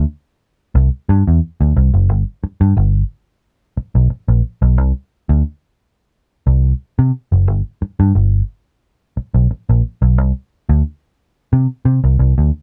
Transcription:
0.75 0.88 C2 loud
1.09 1.22 G2 loud
1.27 1.39 E2 medium
1.61 1.72 D2 medium
1.76 1.89 C2 loud
1.94 2.09 F#1 medium
2.09 2.22 G1 loud
2.44 muted picked electric bass stroke medium
2.61 2.72 G2 loud
2.77 3.02 G1 loud
3.77 muted picked electric bass stroke medium
3.95 4.07 B1 medium
4.10 muted picked electric bass stroke soft
4.28 4.40 A#1 medium
4.62 4.78 B1 medium
4.78 4.91 C2 loud
5.29 5.41 D2 medium
6.47 6.72 C2 medium
6.99 7.10 C3 loud
7.32 7.47 F#1 medium
7.47 7.61 G1 loud
7.82 muted picked electric bass stroke medium
8.00 8.11 G2 loud
8.15 8.40 G1 medium
9.17 muted picked electric bass stroke soft
9.34 9.46 B1 medium
9.51 muted picked electric bass stroke soft
9.69 9.81 A#1 medium
10.02 10.18 B1 medium
10.18 10.31 C2 loud
10.69 10.81 D2 loud
11.53 11.66 C3 loud
11.85 11.99 C3 medium
12.04 12.16 C2 medium
12.19 12.33 C2 medium
12.38 12.50 D2 medium

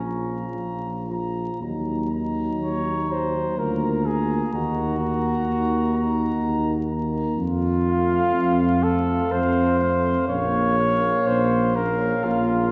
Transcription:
0.00 0.46 A#1 soft
0.00 1.10 C#4 medium
0.05 1.08 F3 soft
0.05 1.08 F4 soft
0.05 1.08 A#5 soft
0.57 1.49 A#1 medium
1.09 1.60 F3 soft
1.09 1.61 F4 soft
1.09 1.60 A#5 soft
1.61 2.51 D#2 medium
1.61 2.11 F#3 soft
1.61 2.12 D#4 soft
1.61 2.11 A#5 soft
2.12 3.08 F#3 soft
2.12 3.09 D#4 soft
2.12 3.09 A#5 soft
2.61 3.47 D#2 medium
2.61 3.13 C#5 medium
3.09 3.57 F#3 soft
3.09 3.57 D#4 soft
3.09 3.60 C5 medium
3.09 3.56 A#5 soft
3.57 4.42 D2 medium
3.57 4.05 A#3 soft
3.57 4.06 F4 soft
3.57 4.08 A#4 medium
3.57 4.05 A#5 soft
4.06 4.52 A#3 soft
4.06 4.53 F4 soft
4.06 4.54 G#4 medium
4.06 4.51 A#5 soft
4.52 5.35 D#2 medium
4.52 4.99 A#3 medium
4.52 4.98 D#4 soft
4.52 6.88 F#4 medium
4.52 4.97 A#5 soft
4.99 5.93 A#3 soft
4.99 5.92 D#4 soft
4.99 5.92 A#5 medium
5.45 6.31 D#2 medium
5.93 6.74 A#3 medium
5.93 6.73 D#4 medium
5.93 6.73 A#5 medium
6.41 7.27 D#2 medium
6.90 7.39 A#3 medium
6.90 7.38 D#4 soft
6.90 7.38 A#5 soft
7.37 8.23 F2 medium
7.37 8.84 F4 loud
7.86 8.82 A3 medium
7.86 8.82 C4 medium
7.86 8.81 F5 medium
8.34 9.21 F2 medium
8.83 9.78 A3 medium
8.83 9.79 C4 medium
8.83 9.33 A4 medium
8.83 9.78 F5 medium
9.32 10.17 F2 medium
9.32 10.28 C5 medium
9.79 10.28 A3 medium
9.79 10.28 C4 medium
9.79 10.27 F5 medium
10.28 11.16 A#1 medium
10.28 10.78 A#3 medium
10.28 10.78 C#4 medium
10.28 11.29 C#5 loud
10.28 10.77 F5 medium
10.78 11.74 A#3 medium
10.78 11.74 C#4 medium
10.78 11.74 F5 medium
11.26 12.13 A#1 medium
11.26 11.77 C5 medium
11.75 12.72 A#3 medium
11.75 12.71 C#4 medium
11.75 12.26 A#4 medium
11.75 12.72 F5 medium
12.24 12.72 A#1 medium
12.24 12.72 F4 medium

